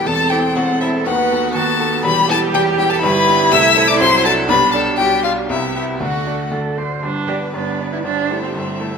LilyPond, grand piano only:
\new Staff \with { instrumentName = "Grand piano" } { \time 2/4 \key e \minor \tempo 4 = 120 <e,, e,>8 <c' e' a'>8 <e,, e,>8 <c' e' a'>8 | <dis, dis>8 <b fis' a'>8 <dis, dis>8 <b fis' a'>8 | <e,, e,>8 <b e' g'>8 <e,, e,>8 <b e' g'>8 | \key g \major <g,, g,>8 <b d' g'>8 <c, c>8 <c' e' a'>8 |
<c, c>8 <d' fis' a'>8 <b,, b,>8 <d' g' d''>8 | <b,, b,>8 <d' g' f''>8 <c, c>8 <b g' e''>8 | <d, d>8 <a d' d''>8 <d, d>8 <a d' d''>8 | <g,, g,>8 <b d' d''>8 <g,, g,>8 <b d' d''>8 |
<g,, g,>8 <a e' a'>8 <g,, g,>8 <a e' a'>8 | }